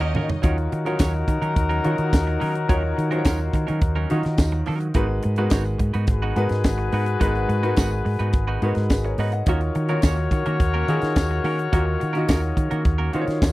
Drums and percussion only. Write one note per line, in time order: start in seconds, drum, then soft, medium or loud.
0.15 mid tom medium
0.30 floor tom loud
0.43 kick loud
0.43 closed hi-hat medium
0.58 closed hi-hat soft
0.72 closed hi-hat medium
0.86 closed hi-hat soft
0.99 kick loud
0.99 snare loud
0.99 closed hi-hat loud
0.99 tambourine loud
1.28 kick medium
1.28 closed hi-hat medium
1.43 closed hi-hat soft
1.56 kick loud
1.56 closed hi-hat medium
1.71 closed hi-hat soft
1.84 closed hi-hat medium
1.98 closed hi-hat soft
2.13 kick loud
2.13 snare loud
2.13 closed hi-hat medium
2.13 tambourine medium
2.41 open hi-hat medium
2.55 closed hi-hat medium
2.69 kick loud
2.69 closed hi-hat medium
2.99 closed hi-hat medium
3.12 closed hi-hat soft
3.25 kick loud
3.25 snare loud
3.25 closed hi-hat medium
3.25 tambourine loud
3.53 kick medium
3.53 closed hi-hat medium
3.68 closed hi-hat medium
3.81 kick loud
3.81 closed hi-hat medium
4.10 closed hi-hat medium
4.23 snare soft
4.23 closed hi-hat soft
4.38 kick loud
4.38 snare loud
4.38 closed hi-hat medium
4.38 tambourine medium
4.66 open hi-hat medium
4.80 closed hi-hat medium
4.94 kick loud
4.94 closed hi-hat medium
5.23 closed hi-hat medium
5.36 closed hi-hat soft
5.50 kick loud
5.50 snare loud
5.50 closed hi-hat medium
5.50 tambourine medium
5.66 closed hi-hat soft
5.79 kick medium
5.79 closed hi-hat medium
5.94 closed hi-hat soft
6.07 kick loud
6.07 closed hi-hat medium
6.36 closed hi-hat medium
6.49 snare soft
6.49 closed hi-hat soft
6.64 kick loud
6.64 snare loud
6.64 closed hi-hat medium
6.64 tambourine medium
6.92 open hi-hat medium
7.06 closed hi-hat medium
7.21 kick loud
7.21 closed hi-hat medium
7.35 closed hi-hat soft
7.50 closed hi-hat medium
7.63 closed hi-hat soft
7.77 kick loud
7.77 snare loud
7.77 closed hi-hat medium
7.77 tambourine loud
8.06 open hi-hat medium
8.20 closed hi-hat medium
8.33 kick loud
8.33 closed hi-hat medium
8.62 closed hi-hat medium
8.75 snare soft
8.75 closed hi-hat soft
8.90 kick loud
8.90 snare medium
8.90 closed hi-hat medium
8.90 tambourine medium
9.18 open hi-hat medium
9.32 closed hi-hat soft
9.46 kick loud
9.46 closed hi-hat medium
9.61 closed hi-hat soft
9.75 closed hi-hat medium
9.89 closed hi-hat soft
10.02 kick loud
10.02 snare loud
10.02 closed hi-hat medium
10.02 tambourine loud
10.31 kick medium
10.31 closed hi-hat medium
10.46 closed hi-hat medium
10.60 kick loud
10.60 closed hi-hat medium
10.88 closed hi-hat medium
11.02 snare soft
11.02 closed hi-hat medium
11.16 kick loud
11.16 snare loud
11.16 closed hi-hat loud
11.16 tambourine medium
11.44 open hi-hat medium
11.59 closed hi-hat medium
11.73 kick loud
11.73 closed hi-hat medium
12.01 closed hi-hat medium
12.15 closed hi-hat soft
12.29 kick loud
12.29 snare loud
12.29 closed hi-hat medium
12.29 tambourine loud
12.44 closed hi-hat soft
12.57 kick medium
12.57 closed hi-hat medium
12.71 closed hi-hat medium
12.85 kick loud
12.85 closed hi-hat medium
13.13 closed hi-hat medium
13.28 snare soft
13.28 closed hi-hat soft
13.42 kick loud
13.42 snare loud
13.42 closed hi-hat medium
13.42 tambourine medium